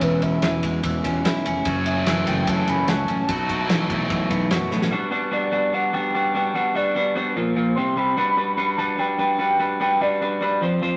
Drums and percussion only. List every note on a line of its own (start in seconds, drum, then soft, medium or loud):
0.01 kick loud
0.01 ride loud
0.22 kick medium
0.22 ride medium
0.42 snare loud
0.42 ride loud
0.63 kick medium
0.63 ride medium
0.83 kick loud
0.83 ride loud
1.04 kick medium
1.04 ride medium
1.25 snare loud
1.25 ride medium
1.46 ride medium
1.65 kick loud
1.65 ride loud
1.86 ride medium
2.06 snare loud
2.06 ride loud
2.27 kick medium
2.27 snare soft
2.27 ride medium
2.47 kick loud
2.47 ride loud
2.67 ride medium
2.88 snare loud
2.88 ride medium
3.08 ride medium
3.29 kick loud
3.29 ride loud
3.49 kick medium
3.49 ride medium
3.69 snare loud
3.69 ride medium
3.90 kick medium
3.90 ride medium
4.10 kick loud
4.10 ride medium
4.30 kick medium
4.30 ride medium
4.51 snare loud
4.51 ride medium
4.71 snare medium
4.82 snare medium